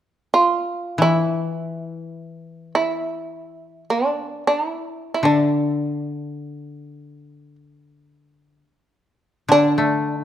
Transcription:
0.34 0.97 F4 medium
0.98 4.36 E3 soft
0.98 2.72 E4 medium
2.75 3.84 E4 medium
3.90 4.43 D4 soft
4.47 4.67 D4 soft
4.67 5.13 E4 soft
5.14 5.24 E4 soft
5.23 8.61 D3 soft
5.23 7.55 D4 soft
9.48 10.24 D3 soft
9.48 10.14 D4 medium
9.78 10.24 A3 soft
10.14 10.24 D#4 medium

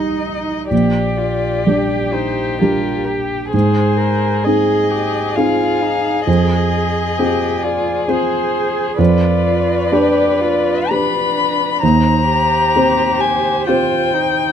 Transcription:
0.00 0.74 G3 soft
0.00 0.67 D#4 soft
0.00 0.71 D#4 soft
0.00 0.74 D#4 soft
0.00 0.74 G4 soft
0.00 0.69 D#5 soft
0.70 1.63 A#1 soft
0.70 1.19 G4 soft
0.70 3.50 G4 soft
0.70 2.15 D5 soft
1.17 1.65 F4 soft
1.64 2.57 G3 soft
1.64 2.57 D4 soft
1.64 2.14 G4 soft
1.64 2.57 G4 soft
2.13 2.61 D#4 soft
2.13 2.60 C5 soft
2.60 3.50 G3 soft
2.60 3.50 D4 soft
2.60 3.06 F4 soft
2.60 3.50 G4 soft
2.60 3.06 A#4 soft
3.05 3.51 G4 soft
3.52 4.42 G#2 soft
3.52 3.98 G#4 soft
3.52 8.95 G#4 soft
3.52 4.46 C5 soft
3.97 4.45 A#4 soft
4.43 5.33 C4 soft
4.43 5.33 D#4 soft
4.43 4.92 G#4 soft
4.43 5.33 G#4 soft
4.43 5.37 D#5 soft
4.91 5.38 G4 soft
5.35 6.23 C4 soft
5.35 6.24 D#4 soft
5.35 5.84 F4 soft
5.35 6.24 G#4 soft
5.35 6.26 F5 soft
5.82 6.26 D#4 soft
6.26 7.16 F2 soft
6.26 7.20 G#4 soft
6.26 7.65 D#5 medium
7.18 8.04 C4 soft
7.18 8.05 F4 soft
7.18 7.65 G4 soft
7.18 8.05 G#4 soft
7.63 8.08 F4 soft
7.63 8.10 D5 soft
8.08 8.95 C4 soft
8.08 8.95 F4 soft
8.08 8.95 G#4 soft
8.08 9.00 G#4 soft
8.08 8.99 C5 soft
8.98 9.89 F2 soft
8.98 9.94 F4 soft
8.98 11.78 B4 soft
8.98 10.92 D5 medium
9.92 10.86 D4 soft
9.92 10.86 G4 soft
9.92 10.42 G4 soft
9.92 10.86 B4 soft
10.41 10.90 F4 soft
10.90 11.78 D4 soft
10.90 11.84 D4 soft
10.90 11.78 G4 soft
10.90 11.79 B4 soft
10.90 11.82 B5 medium
11.82 12.73 D#2 soft
11.82 12.28 D#4 soft
11.82 14.52 C5 soft
11.82 13.22 A#5 medium
12.30 13.69 G4 medium
12.76 13.64 C4 soft
12.76 13.64 G4 soft
12.76 13.64 C5 soft
13.21 13.67 G#5 medium
13.67 14.52 C4 soft
13.67 14.15 F4 soft
13.67 14.52 G4 soft
13.67 14.52 C5 soft
13.67 14.52 G5 medium
14.14 14.52 D#4 soft

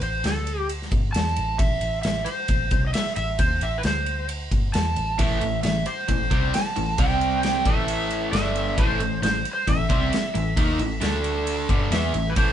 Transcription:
0.01 0.22 A1 medium
0.01 0.25 C5 medium
0.01 ride medium
0.24 0.88 D2 medium
0.24 0.67 A4 medium
0.24 snare loud
0.24 ride medium
0.47 ride medium
0.69 ride medium
0.82 snare soft
0.91 1.13 G1 medium
0.91 kick loud
0.91 ride medium
1.13 1.36 E2 medium
1.13 1.60 A5 loud
1.13 snare loud
1.13 ride medium
1.27 snare soft
1.36 1.58 A1 medium
1.36 ride medium
1.58 1.80 A1 medium
1.58 2.01 E5 medium
1.58 kick loud
1.58 ride medium
1.81 2.03 A1 medium
1.81 ride medium
2.02 2.25 A1 medium
2.02 2.26 E5 medium
2.02 snare loud
2.02 ride medium
2.25 2.83 C5 medium
2.25 ride medium
2.48 2.70 A1 medium
2.48 kick medium
2.48 ride medium
2.71 2.93 C2 medium
2.71 kick loud
2.71 ride medium
2.87 2.93 D#5 medium
2.94 3.15 E5 medium
2.94 snare loud
2.94 ride medium
3.07 snare soft
3.16 3.38 A1 medium
3.16 3.40 E5 medium
3.16 ride medium
3.39 3.60 D#2 medium
3.39 3.62 C5 medium
3.39 kick loud
3.39 ride medium
3.61 3.83 A1 medium
3.61 3.78 E5 medium
3.61 ride medium
3.78 3.85 B4 medium
3.83 4.48 D2 medium
3.83 4.27 C5 medium
3.83 snare loud
3.83 ride medium
4.06 ride medium
4.29 ride medium
4.51 4.72 G1 loud
4.51 kick medium
4.51 ride medium
4.74 4.95 E2 medium
4.74 5.20 A5 loud
4.74 snare loud
4.74 ride medium
4.96 5.18 A1 medium
4.96 ride medium
5.18 5.40 A1 medium
5.18 5.39 A2 medium
5.18 5.40 E3 medium
5.18 5.41 A3 loud
5.18 5.62 E5 medium
5.18 kick loud
5.18 ride medium
5.41 5.63 A1 medium
5.41 5.59 A2 medium
5.41 5.59 E3 medium
5.41 ride medium
5.63 5.85 A1 medium
5.63 5.82 A2 medium
5.63 5.82 E3 medium
5.63 5.87 E5 medium
5.63 snare loud
5.63 ride medium
5.86 6.56 C5 medium
5.86 ride medium
6.08 6.30 A1 medium
6.08 6.27 A2 medium
6.08 6.27 E3 medium
6.08 kick medium
6.08 ride medium
6.31 6.52 C2 loud
6.31 6.53 C3 medium
6.31 6.53 G3 medium
6.31 6.53 C4 medium
6.31 kick loud
6.31 ride medium
6.54 7.00 A5 medium
6.54 snare loud
6.54 ride loud
6.76 6.98 A1 medium
6.76 6.94 A2 medium
6.76 6.94 E3 medium
6.76 ride medium
6.98 7.62 C2 medium
6.98 7.65 C3 medium
6.98 7.65 G3 medium
6.98 7.65 C4 loud
6.98 7.43 G5 loud
6.98 kick loud
6.98 ride loud
7.21 ride medium
7.43 7.67 G5 loud
7.43 snare loud
7.43 ride medium
7.66 8.29 A1 medium
7.66 8.33 A2 medium
7.66 8.33 E3 medium
7.66 8.33 A3 medium
7.66 8.31 E5 medium
7.66 kick loud
7.66 ride medium
7.88 ride medium
8.10 ride medium
8.32 8.74 G1 medium
8.32 8.77 G2 medium
8.32 8.76 D3 medium
8.32 8.77 G3 medium
8.32 8.79 E5 medium
8.32 snare loud
8.32 ride medium
8.56 ride medium
8.77 8.99 A1 medium
8.77 8.98 A2 loud
8.77 8.98 E3 medium
8.77 9.00 A3 medium
8.77 9.22 C5 medium
8.77 kick loud
8.77 ride medium
8.99 9.21 A1 medium
8.99 9.18 A2 medium
8.99 9.18 E3 medium
8.99 ride medium
9.22 9.43 A1 medium
9.22 9.40 A2 medium
9.22 9.40 E3 medium
9.22 9.44 C5 medium
9.22 snare loud
9.22 ride medium
9.45 ride medium
9.53 9.68 C5 medium
9.67 9.88 A1 medium
9.67 9.85 A2 medium
9.67 9.85 E3 medium
9.67 11.91 E5 medium
9.67 kick medium
9.67 ride medium
9.89 10.11 C2 loud
9.89 10.11 C3 medium
9.89 10.11 G3 medium
9.89 10.11 C4 loud
9.89 kick loud
9.89 ride medium
10.13 snare loud
10.13 ride loud
10.34 10.56 A1 medium
10.34 10.52 A2 medium
10.34 10.53 E3 medium
10.34 ride medium
10.56 10.78 D#2 medium
10.56 10.79 D#3 medium
10.56 10.79 A#3 medium
10.56 10.79 D#4 loud
10.56 kick loud
10.56 ride medium
10.79 11.00 A1 medium
10.79 10.97 A2 medium
10.79 10.97 E3 medium
10.79 ride medium
11.00 11.65 D2 medium
11.00 11.68 D3 medium
11.00 11.68 A3 medium
11.00 11.68 D4 medium
11.00 snare loud
11.00 ride medium
11.24 ride medium
11.47 ride medium
11.69 11.90 G1 medium
11.69 11.91 G2 medium
11.69 11.91 D3 loud
11.69 11.91 G3 medium
11.69 kick loud
11.69 ride medium
11.91 12.12 E2 medium
11.91 12.13 E3 medium
11.91 12.13 B3 medium
11.91 12.14 E4 medium
11.91 12.31 E5 medium
11.91 snare loud
11.91 ride medium
12.14 12.35 A1 medium
12.14 12.32 A2 medium
12.14 12.32 E3 medium
12.14 ride medium
12.30 12.37 B4 medium
12.36 12.53 A1 medium
12.36 12.53 A2 medium
12.36 12.53 E3 medium
12.36 12.53 A3 loud
12.36 12.53 C5 medium
12.36 kick loud
12.36 ride medium

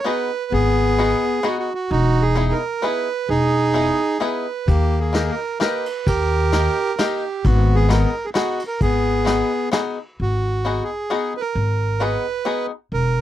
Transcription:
0.04 0.30 B3 medium
0.04 0.30 D#4 medium
0.04 0.30 F#4 soft
0.04 0.31 G#4 medium
0.04 0.53 B4 medium
0.52 1.12 G#1 medium
0.52 1.40 B3 medium
0.52 1.47 G#4 medium
0.98 1.23 B3 medium
0.98 1.23 D#4 soft
0.98 1.23 F#4 medium
0.98 1.24 G#4 medium
1.43 1.68 B3 medium
1.43 1.68 D#4 medium
1.43 1.69 F#4 medium
1.43 1.58 F#4 medium
1.43 1.69 G#4 medium
1.59 1.73 F#4 medium
1.75 1.90 F#4 medium
1.91 2.50 E1 loud
1.91 2.58 D#4 medium
1.91 2.23 F#4 medium
2.22 2.53 G#4 medium
2.35 2.61 B3 medium
2.35 2.61 D#4 medium
2.35 2.61 E4 soft
2.35 2.61 G#4 medium
2.52 2.83 A#4 medium
2.82 3.07 B3 medium
2.82 3.07 D#4 soft
2.82 3.08 E4 medium
2.82 3.08 G#4 medium
2.82 3.30 B4 medium
3.29 3.89 E1 medium
3.29 4.18 D#4 medium
3.29 4.24 G#4 loud
3.74 3.99 B3 soft
3.74 3.99 D#4 medium
3.74 4.00 E4 medium
3.74 4.00 G#4 medium
4.20 4.46 B3 medium
4.20 4.46 D#4 medium
4.20 4.46 E4 soft
4.20 4.46 G#4 medium
4.20 4.69 B4 medium
4.68 5.28 D#2 medium
4.68 5.35 A#3 medium
4.68 4.99 G4 medium
4.68 kick medium
4.68 ride soft
5.00 5.31 G#4 medium
5.13 5.38 A#3 soft
5.13 5.39 D#4 soft
5.13 5.39 G4 soft
5.13 5.39 A#4 medium
5.13 snare medium
5.13 ride soft
5.31 5.59 A#4 medium
5.60 5.85 A#3 medium
5.60 5.85 D#4 medium
5.60 5.85 G4 medium
5.60 5.86 A#4 medium
5.60 6.08 B4 medium
5.60 snare soft
5.60 ride soft
5.86 ride soft
6.07 6.67 D#2 loud
6.07 6.95 G4 medium
6.07 7.02 A#4 medium
6.07 kick medium
6.07 ride soft
6.52 6.77 A#3 medium
6.52 6.77 D#4 medium
6.52 6.78 G4 medium
6.52 6.78 A#4 medium
6.52 snare medium
6.52 ride soft
6.99 7.23 A#3 medium
6.99 7.23 D#4 medium
6.99 7.46 G4 medium
6.99 7.24 G4 medium
6.99 7.24 A#4 medium
6.99 snare medium
6.99 ride soft
7.45 8.04 G#1 loud
7.45 8.10 B3 medium
7.45 7.76 F#4 medium
7.45 kick medium
7.45 ride soft
7.75 7.90 G#4 medium
7.89 8.13 B3 medium
7.89 8.14 D#4 medium
7.89 8.14 F#4 medium
7.89 8.14 G#4 medium
7.89 8.26 A#4 medium
7.89 snare medium
7.89 ride soft
8.25 8.30 G#4 medium
8.34 8.59 B3 medium
8.34 8.59 D#4 medium
8.34 8.59 F#4 medium
8.34 8.63 F#4 medium
8.34 8.60 G#4 medium
8.34 snare medium
8.34 ride soft
8.60 ride soft
8.67 8.80 A#4 medium
8.81 9.41 G#1 medium
8.81 9.70 B3 medium
8.81 9.69 G#4 medium
8.81 kick medium
8.81 ride soft
9.25 9.50 B3 medium
9.25 9.51 D#4 soft
9.25 9.51 F#4 soft
9.25 9.51 G#4 medium
9.25 snare medium
9.25 ride soft
9.72 9.97 B3 medium
9.72 9.97 D#4 medium
9.72 9.98 F#4 medium
9.72 9.98 G#4 medium
9.72 snare medium
9.72 ride soft
10.20 10.79 G#1 medium
10.20 10.84 F#4 medium
10.65 10.89 B3 medium
10.65 10.90 D#4 soft
10.65 10.90 F#4 soft
10.65 10.90 G#4 medium
10.83 11.33 G#4 medium
11.10 11.35 B3 medium
11.10 11.35 D#4 medium
11.10 11.35 F#4 medium
11.10 11.35 G#4 medium
11.37 12.03 A#4 medium
11.37 11.41 B4 medium
11.55 12.15 G#1 medium
12.00 12.25 B3 soft
12.00 12.25 D#4 soft
12.00 12.26 F#4 soft
12.00 12.26 G#4 medium
12.00 12.66 B4 medium
12.45 12.70 B3 medium
12.45 12.71 D#4 medium
12.45 12.71 F#4 medium
12.45 12.71 G#4 medium
12.92 13.21 E1 medium
12.92 13.21 A#4 medium

